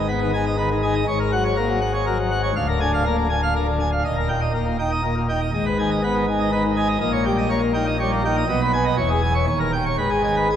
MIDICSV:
0, 0, Header, 1, 2, 480
1, 0, Start_track
1, 0, Key_signature, 5, "minor"
1, 0, Tempo, 494234
1, 1041, Time_signature, 3, 2, 24, 8
1, 8719, Tempo, 505051
1, 10226, End_track
2, 0, Start_track
2, 0, Title_t, "Pipe organ"
2, 0, Program_c, 0, 19
2, 0, Note_on_c, 0, 32, 77
2, 0, Note_on_c, 0, 44, 80
2, 87, Note_on_c, 0, 59, 68
2, 87, Note_on_c, 0, 71, 67
2, 191, Note_off_c, 0, 71, 0
2, 210, Note_on_c, 0, 51, 64
2, 298, Note_off_c, 0, 59, 0
2, 312, Note_off_c, 0, 51, 0
2, 329, Note_on_c, 0, 80, 70
2, 330, Note_on_c, 0, 63, 65
2, 432, Note_off_c, 0, 80, 0
2, 447, Note_on_c, 0, 75, 69
2, 540, Note_off_c, 0, 63, 0
2, 551, Note_off_c, 0, 75, 0
2, 564, Note_on_c, 0, 71, 74
2, 565, Note_on_c, 0, 51, 69
2, 667, Note_off_c, 0, 51, 0
2, 670, Note_off_c, 0, 71, 0
2, 686, Note_on_c, 0, 51, 66
2, 791, Note_off_c, 0, 51, 0
2, 804, Note_on_c, 0, 80, 77
2, 805, Note_on_c, 0, 63, 73
2, 910, Note_off_c, 0, 80, 0
2, 924, Note_on_c, 0, 75, 76
2, 1008, Note_off_c, 0, 63, 0
2, 1009, Note_off_c, 0, 32, 0
2, 1009, Note_off_c, 0, 44, 0
2, 1025, Note_off_c, 0, 75, 0
2, 1044, Note_on_c, 0, 44, 84
2, 1045, Note_on_c, 0, 73, 78
2, 1047, Note_on_c, 0, 32, 87
2, 1150, Note_off_c, 0, 73, 0
2, 1166, Note_on_c, 0, 70, 65
2, 1271, Note_off_c, 0, 70, 0
2, 1285, Note_on_c, 0, 54, 72
2, 1287, Note_on_c, 0, 78, 101
2, 1391, Note_off_c, 0, 78, 0
2, 1409, Note_on_c, 0, 73, 74
2, 1497, Note_off_c, 0, 54, 0
2, 1513, Note_off_c, 0, 73, 0
2, 1523, Note_on_c, 0, 70, 79
2, 1524, Note_on_c, 0, 58, 76
2, 1629, Note_off_c, 0, 70, 0
2, 1640, Note_on_c, 0, 54, 75
2, 1737, Note_off_c, 0, 58, 0
2, 1747, Note_off_c, 0, 54, 0
2, 1763, Note_on_c, 0, 78, 80
2, 1868, Note_off_c, 0, 78, 0
2, 1882, Note_on_c, 0, 73, 77
2, 1988, Note_off_c, 0, 73, 0
2, 2009, Note_on_c, 0, 70, 83
2, 2011, Note_on_c, 0, 54, 77
2, 2107, Note_off_c, 0, 54, 0
2, 2111, Note_off_c, 0, 70, 0
2, 2127, Note_on_c, 0, 54, 81
2, 2229, Note_off_c, 0, 54, 0
2, 2243, Note_on_c, 0, 78, 88
2, 2347, Note_off_c, 0, 78, 0
2, 2362, Note_on_c, 0, 73, 88
2, 2438, Note_off_c, 0, 44, 0
2, 2440, Note_off_c, 0, 32, 0
2, 2461, Note_off_c, 0, 73, 0
2, 2485, Note_on_c, 0, 38, 95
2, 2485, Note_on_c, 0, 77, 82
2, 2489, Note_on_c, 0, 26, 98
2, 2588, Note_off_c, 0, 77, 0
2, 2605, Note_on_c, 0, 70, 76
2, 2708, Note_off_c, 0, 70, 0
2, 2724, Note_on_c, 0, 80, 116
2, 2725, Note_on_c, 0, 50, 79
2, 2827, Note_off_c, 0, 80, 0
2, 2851, Note_on_c, 0, 77, 78
2, 2935, Note_off_c, 0, 50, 0
2, 2951, Note_off_c, 0, 77, 0
2, 2964, Note_on_c, 0, 58, 78
2, 2967, Note_on_c, 0, 70, 88
2, 3069, Note_off_c, 0, 70, 0
2, 3081, Note_on_c, 0, 50, 76
2, 3176, Note_off_c, 0, 58, 0
2, 3186, Note_off_c, 0, 50, 0
2, 3200, Note_on_c, 0, 80, 83
2, 3306, Note_off_c, 0, 80, 0
2, 3329, Note_on_c, 0, 77, 75
2, 3431, Note_off_c, 0, 77, 0
2, 3455, Note_on_c, 0, 50, 72
2, 3455, Note_on_c, 0, 70, 76
2, 3550, Note_off_c, 0, 50, 0
2, 3556, Note_off_c, 0, 70, 0
2, 3569, Note_on_c, 0, 50, 70
2, 3672, Note_off_c, 0, 50, 0
2, 3691, Note_on_c, 0, 80, 80
2, 3794, Note_off_c, 0, 80, 0
2, 3811, Note_on_c, 0, 77, 77
2, 3887, Note_off_c, 0, 38, 0
2, 3889, Note_off_c, 0, 26, 0
2, 3910, Note_off_c, 0, 77, 0
2, 3932, Note_on_c, 0, 27, 77
2, 3933, Note_on_c, 0, 75, 76
2, 3936, Note_on_c, 0, 39, 84
2, 4037, Note_off_c, 0, 75, 0
2, 4054, Note_on_c, 0, 70, 64
2, 4158, Note_off_c, 0, 70, 0
2, 4165, Note_on_c, 0, 79, 91
2, 4171, Note_on_c, 0, 46, 61
2, 4274, Note_off_c, 0, 79, 0
2, 4285, Note_on_c, 0, 75, 63
2, 4386, Note_off_c, 0, 46, 0
2, 4394, Note_off_c, 0, 75, 0
2, 4412, Note_on_c, 0, 70, 67
2, 4414, Note_on_c, 0, 58, 65
2, 4519, Note_off_c, 0, 70, 0
2, 4534, Note_on_c, 0, 46, 60
2, 4629, Note_off_c, 0, 58, 0
2, 4641, Note_off_c, 0, 46, 0
2, 4651, Note_on_c, 0, 63, 59
2, 4652, Note_on_c, 0, 79, 67
2, 4760, Note_off_c, 0, 79, 0
2, 4775, Note_on_c, 0, 75, 59
2, 4869, Note_off_c, 0, 63, 0
2, 4883, Note_off_c, 0, 75, 0
2, 4888, Note_on_c, 0, 46, 58
2, 4889, Note_on_c, 0, 70, 68
2, 4995, Note_off_c, 0, 46, 0
2, 5000, Note_off_c, 0, 70, 0
2, 5014, Note_on_c, 0, 46, 59
2, 5123, Note_off_c, 0, 46, 0
2, 5138, Note_on_c, 0, 63, 66
2, 5138, Note_on_c, 0, 79, 67
2, 5246, Note_off_c, 0, 79, 0
2, 5256, Note_on_c, 0, 75, 67
2, 5343, Note_off_c, 0, 63, 0
2, 5346, Note_off_c, 0, 27, 0
2, 5348, Note_off_c, 0, 39, 0
2, 5360, Note_off_c, 0, 75, 0
2, 5380, Note_on_c, 0, 75, 74
2, 5381, Note_on_c, 0, 32, 83
2, 5381, Note_on_c, 0, 44, 81
2, 5487, Note_off_c, 0, 75, 0
2, 5500, Note_on_c, 0, 71, 63
2, 5607, Note_off_c, 0, 71, 0
2, 5625, Note_on_c, 0, 51, 65
2, 5626, Note_on_c, 0, 80, 94
2, 5730, Note_off_c, 0, 80, 0
2, 5739, Note_on_c, 0, 75, 66
2, 5836, Note_off_c, 0, 51, 0
2, 5846, Note_off_c, 0, 75, 0
2, 5865, Note_on_c, 0, 71, 69
2, 5868, Note_on_c, 0, 59, 67
2, 5969, Note_off_c, 0, 71, 0
2, 5977, Note_on_c, 0, 51, 68
2, 6077, Note_off_c, 0, 59, 0
2, 6084, Note_off_c, 0, 51, 0
2, 6095, Note_on_c, 0, 63, 67
2, 6096, Note_on_c, 0, 80, 73
2, 6203, Note_off_c, 0, 80, 0
2, 6214, Note_on_c, 0, 75, 66
2, 6308, Note_off_c, 0, 63, 0
2, 6321, Note_off_c, 0, 75, 0
2, 6333, Note_on_c, 0, 51, 68
2, 6337, Note_on_c, 0, 71, 75
2, 6435, Note_off_c, 0, 51, 0
2, 6443, Note_off_c, 0, 71, 0
2, 6455, Note_on_c, 0, 51, 69
2, 6561, Note_off_c, 0, 51, 0
2, 6570, Note_on_c, 0, 63, 69
2, 6570, Note_on_c, 0, 80, 78
2, 6678, Note_off_c, 0, 80, 0
2, 6683, Note_on_c, 0, 75, 73
2, 6773, Note_off_c, 0, 32, 0
2, 6773, Note_off_c, 0, 44, 0
2, 6774, Note_off_c, 0, 63, 0
2, 6784, Note_off_c, 0, 75, 0
2, 6802, Note_on_c, 0, 46, 80
2, 6803, Note_on_c, 0, 75, 74
2, 6804, Note_on_c, 0, 34, 83
2, 6913, Note_off_c, 0, 75, 0
2, 6920, Note_on_c, 0, 73, 67
2, 7030, Note_off_c, 0, 73, 0
2, 7044, Note_on_c, 0, 55, 67
2, 7046, Note_on_c, 0, 79, 95
2, 7153, Note_off_c, 0, 79, 0
2, 7167, Note_on_c, 0, 75, 68
2, 7257, Note_off_c, 0, 55, 0
2, 7273, Note_off_c, 0, 75, 0
2, 7278, Note_on_c, 0, 73, 75
2, 7285, Note_on_c, 0, 58, 76
2, 7375, Note_off_c, 0, 58, 0
2, 7387, Note_off_c, 0, 73, 0
2, 7394, Note_on_c, 0, 58, 76
2, 7504, Note_off_c, 0, 58, 0
2, 7516, Note_on_c, 0, 79, 79
2, 7520, Note_on_c, 0, 63, 70
2, 7625, Note_off_c, 0, 79, 0
2, 7640, Note_on_c, 0, 75, 74
2, 7734, Note_off_c, 0, 63, 0
2, 7747, Note_off_c, 0, 75, 0
2, 7765, Note_on_c, 0, 73, 82
2, 7771, Note_on_c, 0, 55, 77
2, 7870, Note_off_c, 0, 73, 0
2, 7892, Note_on_c, 0, 58, 78
2, 7980, Note_off_c, 0, 55, 0
2, 7994, Note_off_c, 0, 58, 0
2, 8012, Note_on_c, 0, 63, 83
2, 8014, Note_on_c, 0, 79, 89
2, 8114, Note_off_c, 0, 79, 0
2, 8130, Note_on_c, 0, 75, 86
2, 8195, Note_off_c, 0, 46, 0
2, 8196, Note_off_c, 0, 34, 0
2, 8210, Note_off_c, 0, 63, 0
2, 8226, Note_off_c, 0, 75, 0
2, 8245, Note_on_c, 0, 35, 97
2, 8246, Note_on_c, 0, 75, 91
2, 8247, Note_on_c, 0, 47, 101
2, 8349, Note_off_c, 0, 75, 0
2, 8363, Note_on_c, 0, 71, 70
2, 8467, Note_off_c, 0, 71, 0
2, 8482, Note_on_c, 0, 80, 114
2, 8586, Note_off_c, 0, 80, 0
2, 8599, Note_on_c, 0, 75, 78
2, 8699, Note_off_c, 0, 75, 0
2, 8705, Note_off_c, 0, 35, 0
2, 8706, Note_off_c, 0, 47, 0
2, 8716, Note_on_c, 0, 73, 83
2, 8719, Note_on_c, 0, 28, 104
2, 8721, Note_on_c, 0, 40, 97
2, 8821, Note_off_c, 0, 73, 0
2, 8837, Note_on_c, 0, 68, 78
2, 8940, Note_off_c, 0, 68, 0
2, 8951, Note_on_c, 0, 80, 113
2, 9057, Note_off_c, 0, 80, 0
2, 9066, Note_on_c, 0, 73, 78
2, 9169, Note_off_c, 0, 73, 0
2, 9176, Note_off_c, 0, 28, 0
2, 9177, Note_off_c, 0, 40, 0
2, 9188, Note_on_c, 0, 27, 98
2, 9188, Note_on_c, 0, 39, 101
2, 9188, Note_on_c, 0, 73, 80
2, 9295, Note_off_c, 0, 73, 0
2, 9311, Note_on_c, 0, 70, 77
2, 9416, Note_off_c, 0, 70, 0
2, 9433, Note_on_c, 0, 79, 101
2, 9538, Note_off_c, 0, 79, 0
2, 9556, Note_on_c, 0, 73, 76
2, 9654, Note_off_c, 0, 27, 0
2, 9654, Note_off_c, 0, 39, 0
2, 9655, Note_off_c, 0, 73, 0
2, 9672, Note_on_c, 0, 44, 84
2, 9674, Note_on_c, 0, 71, 74
2, 9675, Note_on_c, 0, 32, 82
2, 9780, Note_off_c, 0, 71, 0
2, 9786, Note_on_c, 0, 68, 61
2, 9896, Note_off_c, 0, 68, 0
2, 9917, Note_on_c, 0, 51, 62
2, 9917, Note_on_c, 0, 80, 95
2, 10023, Note_off_c, 0, 80, 0
2, 10035, Note_on_c, 0, 71, 64
2, 10132, Note_off_c, 0, 51, 0
2, 10143, Note_off_c, 0, 71, 0
2, 10162, Note_on_c, 0, 56, 66
2, 10164, Note_on_c, 0, 68, 72
2, 10226, Note_off_c, 0, 32, 0
2, 10226, Note_off_c, 0, 44, 0
2, 10226, Note_off_c, 0, 56, 0
2, 10226, Note_off_c, 0, 68, 0
2, 10226, End_track
0, 0, End_of_file